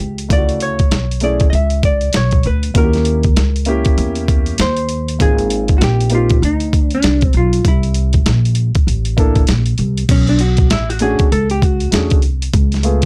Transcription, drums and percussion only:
0.18 closed hi-hat
0.30 kick, closed hi-hat
0.49 closed hi-hat
0.60 closed hi-hat
0.79 kick, closed hi-hat
0.91 snare, closed hi-hat
1.11 closed hi-hat
1.20 closed hi-hat
1.40 kick, closed hi-hat
1.53 closed hi-hat
1.70 closed hi-hat
1.83 kick, closed hi-hat
2.01 closed hi-hat
2.13 snare, closed hi-hat
2.31 kick, closed hi-hat
2.43 closed hi-hat
2.63 closed hi-hat
2.75 kick, closed hi-hat
2.93 snare, closed hi-hat
3.05 closed hi-hat
3.23 kick, closed hi-hat
3.36 snare, closed hi-hat
3.56 closed hi-hat
3.65 closed hi-hat
3.85 kick, closed hi-hat
3.98 closed hi-hat
4.15 closed hi-hat
4.28 kick, closed hi-hat
4.46 closed hi-hat
4.58 snare, closed hi-hat
4.77 closed hi-hat
4.89 closed hi-hat
5.08 closed hi-hat
5.20 kick, closed hi-hat
5.38 closed hi-hat
5.50 closed hi-hat
5.68 kick, closed hi-hat
5.81 snare, closed hi-hat
6.01 closed hi-hat
6.10 closed hi-hat
6.29 kick, closed hi-hat
6.43 closed hi-hat
6.60 closed hi-hat
6.73 kick, closed hi-hat
6.91 closed hi-hat
7.03 snare, closed hi-hat
7.21 kick, closed hi-hat
7.33 closed hi-hat
7.53 closed hi-hat
7.65 kick, closed hi-hat
7.83 closed hi-hat
7.94 closed hi-hat
8.13 kick, closed hi-hat
8.26 snare, closed hi-hat
8.45 closed hi-hat
8.55 closed hi-hat
8.75 kick, closed hi-hat
8.88 closed hi-hat
9.05 closed hi-hat
9.18 kick, closed hi-hat
9.35 kick, closed hi-hat
9.47 snare, closed hi-hat
9.66 closed hi-hat
9.78 closed hi-hat
9.97 closed hi-hat
10.09 kick, closed hi-hat, crash
10.27 closed hi-hat
10.39 closed hi-hat
10.57 kick, closed hi-hat
10.70 snare, closed hi-hat
10.90 closed hi-hat
10.99 closed hi-hat
11.19 kick, closed hi-hat
11.32 closed hi-hat
11.50 closed hi-hat
11.62 kick, closed hi-hat
11.80 closed hi-hat
11.92 snare, closed hi-hat
12.10 kick, closed hi-hat
12.22 closed hi-hat
12.42 closed hi-hat
12.53 kick, closed hi-hat
12.72 snare, closed hi-hat
12.83 closed hi-hat
13.02 closed hi-hat

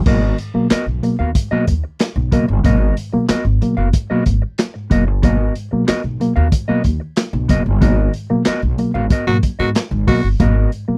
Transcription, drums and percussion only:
0.06 kick, crash
0.38 closed hi-hat
0.70 snare, clap, closed hi-hat
1.03 closed hi-hat
1.35 kick, closed hi-hat
1.67 kick, closed hi-hat
1.99 snare, clap, closed hi-hat
2.32 kick, closed hi-hat
2.64 kick, closed hi-hat
2.97 closed hi-hat
3.29 snare, clap, closed hi-hat
3.62 closed hi-hat
3.93 kick, closed hi-hat
4.26 kick, closed hi-hat
4.58 snare, clap, closed hi-hat
4.91 kick, closed hi-hat
5.23 kick, closed hi-hat
5.55 closed hi-hat
5.88 snare, clap, closed hi-hat
6.21 closed hi-hat
6.52 kick, closed hi-hat
6.84 kick, closed hi-hat
7.16 snare, clap, closed hi-hat
7.49 kick, closed hi-hat
7.82 kick, closed hi-hat
8.14 closed hi-hat
8.45 snare, clap, closed hi-hat
8.78 closed hi-hat
9.10 kick, closed hi-hat
9.43 kick, closed hi-hat
9.75 snare, clap, closed hi-hat
10.07 kick, open hi-hat
10.40 kick, closed hi-hat, muted conga
10.72 closed hi-hat

